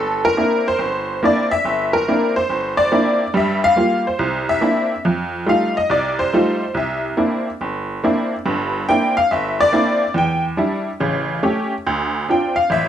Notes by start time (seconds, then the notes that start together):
Already playing: G1 A4
0.25 A#4
0.37 A#3 C4 D4 E4
0.68 C5
0.79 G1
1.23 A#3 C4 D4 E4 D5
1.51 E5
1.65 G1
1.93 A#4
2.08 A#3 C4 D4 E4
2.36 C5
2.49 G1
2.77 D5
2.92 A#3 C4 D4 E4
3.34 G2 G3 E5
3.64 F5
3.76 G3 A#3 F4
4.07 C5
4.19 C2
4.49 E5
4.61 A#3 C4 D4 E4
5.05 F2
5.46 G3 A3 D#4 F4 F5
5.77 D#5
5.90 C2 D5
6.19 C5
6.33 G3 A3 D#4 F4
6.74 C2 E5
7.17 A#3 C4 D4 E4
7.61 G1
8.04 A#3 C4 D4 E4
8.46 G1 G2
8.89 A#3 C4 D4 E4 G5
9.17 F5
9.31 G1 E5
9.60 D5
9.72 A#3 C4 D4 E4
10.14 E2 G5
10.57 G3 D4 E4
11.00 A1 C#3
11.43 A3 C#4 G4
11.87 D2
12.29 C4 D4 F4 G5
12.56 F5
12.70 A1 E5